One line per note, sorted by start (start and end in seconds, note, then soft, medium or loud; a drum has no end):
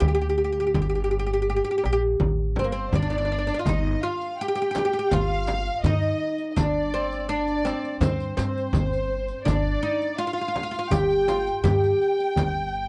0.00 0.76 D2 medium
0.00 0.07 G4 medium
0.00 frame drum medium
0.00 darbuka dum medium
0.08 0.13 G4 medium
0.15 0.20 G4 medium
0.21 0.28 G4 medium
0.21 darbuka ka soft
0.29 0.37 G4 medium
0.38 0.43 G4 medium
0.38 darbuka ka soft
0.44 0.51 G4 medium
0.52 0.59 G4 medium
0.58 0.65 G4 medium
0.58 darbuka ka soft
0.67 0.74 G4 soft
0.74 1.59 G1 medium
0.74 0.81 G4 medium
0.74 frame drum medium
0.74 darbuka dum medium
0.82 0.88 G4 medium
0.89 0.94 G4 medium
0.95 1.03 G4 soft
1.04 1.10 G4 medium
1.11 1.18 G4 medium
1.19 1.25 G4 medium
1.27 1.32 G4 medium
1.33 1.41 G4 medium
1.42 1.48 G4 medium
1.48 1.55 G4 medium
1.48 darbuka ka soft
1.56 1.63 G4 medium
1.65 1.70 G4 medium
1.65 darbuka ka soft
1.71 1.77 G4 medium
1.78 1.84 G4 medium
1.84 2.17 A#1 medium
1.84 1.91 G4 medium
1.84 darbuka tek medium
1.93 2.01 G4 medium
2.03 darbuka ka soft
2.20 2.53 A1 medium
2.20 frame drum medium
2.20 darbuka dum medium
2.39 darbuka ka soft
2.56 2.89 G1 medium
2.56 2.65 C4 medium
2.56 2.70 C5 medium
2.56 darbuka tek medium
2.56 frame drum medium
2.64 2.71 A#3 medium
2.71 2.95 C4 medium
2.71 2.92 C5 medium
2.75 darbuka ka soft
2.93 3.49 G1 medium
2.93 3.01 D4 medium
2.93 3.59 D5 medium
2.93 riq soft
2.93 frame drum medium
2.93 darbuka dum medium
3.02 3.09 D4 medium
3.10 3.17 D4 medium
3.10 riq soft
3.18 3.24 D4 medium
3.25 3.31 D4 medium
3.32 3.37 D4 medium
3.39 3.46 D4 medium
3.47 3.53 D4 medium
3.47 riq soft
3.54 3.59 D4 medium
3.59 3.66 F4 medium
3.59 3.66 F5 medium
3.65 3.94 G1 medium
3.65 4.03 D#4 medium
3.65 4.02 D#5 medium
3.65 riq medium
3.65 frame drum medium
3.65 darbuka dum medium
4.03 4.40 F4 medium
4.03 4.39 F5 medium
4.21 riq soft
4.38 4.47 G4 medium
4.38 5.11 G5 medium
4.48 4.54 G4 medium
4.56 4.61 G4 medium
4.56 riq soft
4.56 darbuka ka soft
4.62 4.69 G4 medium
4.71 4.77 G4 medium
4.71 riq medium
4.76 4.84 G4 medium
4.76 darbuka tek medium
4.76 frame drum medium
4.85 4.92 G4 medium
4.93 4.98 G4 medium
4.93 riq soft
4.93 darbuka ka soft
4.99 5.06 G4 medium
5.11 5.68 G1 medium
5.11 5.81 F4 loud
5.11 5.84 F5 loud
5.11 riq medium
5.11 darbuka dum medium
5.11 frame drum medium
5.47 riq soft
5.47 darbuka tek medium
5.47 frame drum medium
5.66 riq soft
5.83 6.12 G2 medium
5.83 6.56 D#4 medium
5.83 6.45 D#5 medium
5.83 riq medium
5.83 frame drum medium
5.83 darbuka dum loud
6.02 riq soft
6.38 riq soft
6.51 6.57 D#5 medium
6.56 7.69 G1 medium
6.56 6.93 D4 medium
6.56 7.29 D5 medium
6.56 riq medium
6.56 frame drum medium
6.56 darbuka dum medium
6.94 7.29 C4 medium
7.12 riq soft
7.29 7.64 D4 medium
7.29 7.98 D5 medium
7.48 riq soft
7.48 darbuka ka soft
7.65 8.00 C4 medium
7.65 riq medium
7.65 darbuka tek medium
7.84 riq soft
7.84 darbuka ka soft
8.01 8.29 G2 loud
8.01 8.36 C4 medium
8.01 8.38 C5 medium
8.01 riq medium
8.01 frame drum loud
8.01 darbuka dum medium
8.20 riq soft
8.37 8.66 G2 medium
8.37 9.50 C4 medium
8.37 9.43 C5 medium
8.37 riq medium
8.37 frame drum medium
8.58 riq soft
8.73 9.29 G1 medium
8.73 riq soft
8.73 frame drum loud
8.73 darbuka dum medium
8.93 riq soft
8.93 darbuka ka soft
9.28 riq soft
9.45 9.75 G1 medium
9.45 9.82 D4 medium
9.45 10.19 D5 medium
9.45 riq medium
9.45 frame drum medium
9.45 darbuka dum medium
9.83 10.18 D#4 medium
10.02 riq soft
10.18 10.26 F4 medium
10.18 10.92 F5 medium
10.27 10.32 F4 medium
10.33 10.40 F4 medium
10.38 10.47 F4 soft
10.38 riq soft
10.38 darbuka ka soft
10.48 10.55 F4 medium
10.56 10.62 F4 medium
10.56 darbuka tek medium
10.56 frame drum medium
10.63 10.70 F4 medium
10.71 10.78 F4 medium
10.71 riq soft
10.71 darbuka ka soft
10.79 10.86 F4 medium
10.91 11.47 G1 medium
10.91 11.28 G4 medium
10.91 11.62 G5 medium
10.91 riq medium
10.91 frame drum medium
10.91 darbuka dum medium
11.11 riq soft
11.28 11.63 F4 medium
11.28 riq soft
11.28 darbuka tek medium
11.28 frame drum medium
11.47 riq soft
11.63 11.92 G2 medium
11.63 12.88 G4 medium
11.63 12.88 G5 medium
11.63 riq medium
11.63 darbuka dum medium
11.63 frame drum medium
11.84 riq soft
12.01 riq soft
12.01 darbuka ka soft
12.19 riq soft
12.19 darbuka ka soft
12.36 12.88 G1 medium
12.36 riq medium
12.36 darbuka dum medium
12.36 frame drum medium